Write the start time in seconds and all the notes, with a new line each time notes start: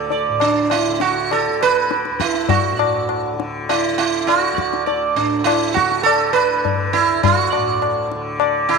Already playing: D2 A2 D3 A4
0.10 D5, tabla tin
0.29 A2
0.40 D4, tabla na
0.70 E4, tabla na
0.89 D3
1.00 F#4, tabla te
1.31 A4, tabla na
1.49 D3
1.61 B4, tabla na
1.91 tabla te
2.05 tabla te
2.10 D2
2.20 E4, tabla ke
2.35 tabla te
2.49 F#4, tabla tin, tabla ge
2.71 A2
2.79 D5, tabla na
3.09 tabla na
3.33 D3
3.40 tabla te
3.69 E4, tabla na
3.93 D3
3.98 E4, tabla na
4.27 F#4, tabla na
4.52 D2 D5
4.58 tabla ke
4.73 tabla te
4.86 D5, tabla tin
5.15 A2 D4, tabla na
5.44 E4, tabla na
5.74 D3 F#4, tabla ke
5.92 tabla te
6.03 A4, tabla na
6.33 D3 B4, tabla na
6.65 tabla tin, tabla ge
6.93 D2 E4, tabla na
7.23 F#4, tabla tin, tabla ge
7.52 A2 D5, tabla na
7.82 tabla na
8.11 D3, tabla te
8.40 D5, tabla na
8.69 E4, tabla na
8.74 D3